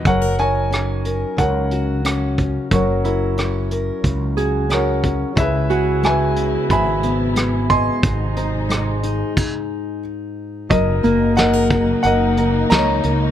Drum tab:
CC |--------|--------|--------|----x---|
HH |xxxxxxxx|xxxxxxxx|xxxxxxxx|xxxx----|
SD |--r---r-|--r---r-|--r---r-|--r-----|
BD |o---o--o|o---o--o|o---o--o|o---o---|

CC |--------|
HH |xxxxxxxx|
SD |--o---o-|
BD |o--o----|